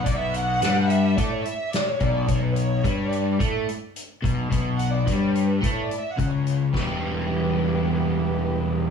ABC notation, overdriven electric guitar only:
X:1
M:4/4
L:1/8
Q:1/4=108
K:Edor
V:1 name="Overdriven electric guitar" clef=bass
B,,2 G,2 A, z2 B,, | B,,2 G,2 A, z2 B,, | B,,2 G,2 A, z C,2 | [E,,B,,E,G,B,G]8 |]